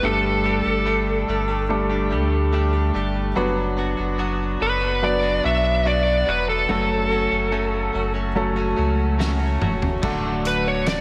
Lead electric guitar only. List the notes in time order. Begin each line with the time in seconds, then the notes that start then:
0.05 A4
4.62 B4
5.04 D5
5.45 E5
5.87 D5
6.29 B4
6.49 A4
10.47 B4
10.68 C#5
10.88 D5